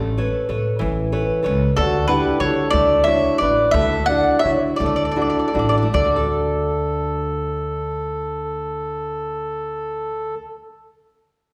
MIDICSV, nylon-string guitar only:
0, 0, Header, 1, 2, 480
1, 0, Start_track
1, 0, Key_signature, 2, "major"
1, 0, Tempo, 639659
1, 1319, Time_signature, 6, 3, 24, 8
1, 1802, Tempo, 676437
1, 3242, Tempo, 753769
1, 4202, Tempo, 782269
1, 7634, End_track
2, 0, Start_track
2, 0, Title_t, "Nylon-string guitar"
2, 0, Program_c, 0, 24
2, 0, Note_on_c, 0, 57, 73
2, 132, Note_on_c, 0, 71, 49
2, 136, Note_on_c, 0, 73, 55
2, 138, Note_on_c, 0, 69, 54
2, 346, Note_off_c, 0, 57, 0
2, 356, Note_off_c, 0, 69, 0
2, 361, Note_off_c, 0, 71, 0
2, 363, Note_off_c, 0, 73, 0
2, 365, Note_on_c, 0, 69, 47
2, 369, Note_on_c, 0, 71, 43
2, 373, Note_on_c, 0, 73, 48
2, 594, Note_on_c, 0, 52, 79
2, 748, Note_off_c, 0, 69, 0
2, 751, Note_off_c, 0, 71, 0
2, 752, Note_off_c, 0, 73, 0
2, 843, Note_on_c, 0, 69, 50
2, 844, Note_on_c, 0, 71, 50
2, 845, Note_on_c, 0, 73, 55
2, 1062, Note_off_c, 0, 69, 0
2, 1063, Note_off_c, 0, 52, 0
2, 1069, Note_off_c, 0, 71, 0
2, 1071, Note_on_c, 0, 69, 51
2, 1073, Note_off_c, 0, 73, 0
2, 1078, Note_on_c, 0, 71, 47
2, 1082, Note_on_c, 0, 73, 59
2, 1266, Note_off_c, 0, 69, 0
2, 1270, Note_off_c, 0, 71, 0
2, 1272, Note_off_c, 0, 73, 0
2, 1323, Note_on_c, 0, 50, 70
2, 1560, Note_on_c, 0, 62, 54
2, 1568, Note_on_c, 0, 64, 51
2, 1569, Note_on_c, 0, 78, 65
2, 1791, Note_off_c, 0, 50, 0
2, 1796, Note_off_c, 0, 62, 0
2, 1801, Note_off_c, 0, 64, 0
2, 1805, Note_on_c, 0, 62, 42
2, 1809, Note_on_c, 0, 64, 41
2, 1811, Note_on_c, 0, 66, 47
2, 1946, Note_off_c, 0, 78, 0
2, 2029, Note_on_c, 0, 57, 70
2, 2178, Note_off_c, 0, 62, 0
2, 2181, Note_off_c, 0, 64, 0
2, 2182, Note_off_c, 0, 66, 0
2, 2268, Note_on_c, 0, 62, 52
2, 2272, Note_on_c, 0, 66, 54
2, 2275, Note_on_c, 0, 64, 49
2, 2490, Note_off_c, 0, 57, 0
2, 2517, Note_off_c, 0, 62, 0
2, 2518, Note_off_c, 0, 64, 0
2, 2521, Note_off_c, 0, 66, 0
2, 2525, Note_on_c, 0, 62, 52
2, 2529, Note_on_c, 0, 64, 46
2, 2529, Note_on_c, 0, 66, 55
2, 2766, Note_on_c, 0, 57, 62
2, 2907, Note_off_c, 0, 62, 0
2, 2908, Note_off_c, 0, 64, 0
2, 2909, Note_off_c, 0, 66, 0
2, 2996, Note_on_c, 0, 62, 54
2, 3007, Note_on_c, 0, 64, 48
2, 3009, Note_on_c, 0, 66, 53
2, 3238, Note_off_c, 0, 57, 0
2, 3244, Note_off_c, 0, 62, 0
2, 3246, Note_off_c, 0, 64, 0
2, 3249, Note_off_c, 0, 66, 0
2, 3250, Note_on_c, 0, 62, 41
2, 3255, Note_on_c, 0, 64, 38
2, 3257, Note_on_c, 0, 66, 45
2, 3482, Note_on_c, 0, 57, 68
2, 3624, Note_off_c, 0, 62, 0
2, 3625, Note_off_c, 0, 64, 0
2, 3627, Note_off_c, 0, 66, 0
2, 3707, Note_on_c, 0, 64, 48
2, 3710, Note_on_c, 0, 62, 49
2, 3711, Note_on_c, 0, 66, 54
2, 3941, Note_off_c, 0, 62, 0
2, 3942, Note_off_c, 0, 64, 0
2, 3945, Note_off_c, 0, 57, 0
2, 3946, Note_off_c, 0, 66, 0
2, 3948, Note_on_c, 0, 62, 47
2, 3952, Note_on_c, 0, 64, 47
2, 3953, Note_on_c, 0, 66, 53
2, 4058, Note_on_c, 0, 50, 58
2, 4130, Note_on_c, 0, 57, 50
2, 4149, Note_off_c, 0, 62, 0
2, 4149, Note_off_c, 0, 64, 0
2, 4152, Note_off_c, 0, 66, 0
2, 4196, Note_on_c, 0, 62, 48
2, 4271, Note_on_c, 0, 66, 53
2, 4339, Note_on_c, 0, 69, 54
2, 6761, Note_off_c, 0, 50, 0
2, 6830, Note_off_c, 0, 57, 0
2, 6894, Note_off_c, 0, 62, 0
2, 6969, Note_off_c, 0, 66, 0
2, 7036, Note_off_c, 0, 69, 0
2, 7634, End_track
0, 0, End_of_file